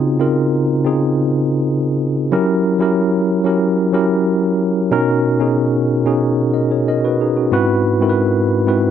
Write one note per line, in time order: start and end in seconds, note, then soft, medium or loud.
0.00 0.12 C#3 loud
0.00 0.12 C4 medium
0.00 0.12 D#4 medium
0.00 0.13 F4 medium
0.00 0.13 G#4 loud
0.19 0.74 C#3 medium
0.19 0.74 C4 medium
0.19 0.74 D#4 medium
0.19 0.74 F4 medium
0.19 0.74 A#4 medium
0.85 1.92 C#3 medium
0.85 1.92 C4 medium
0.85 1.93 D#4 medium
0.85 1.93 F4 medium
0.85 1.93 G#4 medium
2.32 2.72 F#3 loud
2.32 2.72 C#4 medium
2.32 2.72 E4 medium
2.32 2.73 G4 medium
2.32 2.73 A#4 loud
2.79 3.33 F#3 medium
2.79 3.34 C#4 medium
2.79 3.34 E4 medium
2.79 3.34 G4 medium
2.79 3.35 A#4 medium
3.44 3.85 F#3 medium
3.44 3.86 C#4 medium
3.44 3.86 E4 medium
3.44 3.86 G4 medium
3.44 3.86 A#4 medium
3.93 4.74 F#3 medium
3.93 4.74 C#4 medium
3.93 4.74 E4 medium
3.93 4.74 G4 medium
3.93 4.74 A#4 medium
4.91 5.32 B2 loud
4.91 5.32 C#4 medium
4.91 5.32 D#4 medium
4.91 5.32 F#4 medium
4.91 5.32 A#4 loud
5.39 5.93 B2 medium
5.39 5.94 C#4 medium
5.39 5.94 D#4 medium
5.39 5.94 F#4 medium
5.39 5.95 G#4 medium
6.05 7.12 B2 medium
6.05 6.55 C#4 medium
6.05 6.55 D#4 medium
6.05 6.55 F#4 medium
6.05 6.55 G#4 medium
6.54 6.70 A#4 soft
6.54 6.70 D#5 medium
6.71 6.87 G#4 soft
6.71 6.87 C#5 medium
6.88 7.04 A#4 medium
6.88 7.03 D#5 medium
7.05 7.20 F#4 medium
7.05 7.20 B4 medium
7.21 7.36 D#4 medium
7.21 7.36 G#4 medium
7.37 7.68 C#4 soft
7.37 7.52 F#4 medium
7.52 7.92 G#2 loud
7.52 7.92 C4 medium
7.52 7.92 E4 medium
7.52 7.93 F#4 medium
7.52 7.93 B4 loud
8.00 8.54 G#2 medium
8.00 8.55 C4 medium
8.00 8.55 E4 medium
8.00 8.55 F#4 medium
8.00 8.08 A#4 medium
8.09 8.59 B4 medium
8.67 8.91 G#2 medium
8.67 8.91 C4 medium
8.67 8.91 E4 medium
8.67 8.91 F#4 medium
8.67 8.91 B4 medium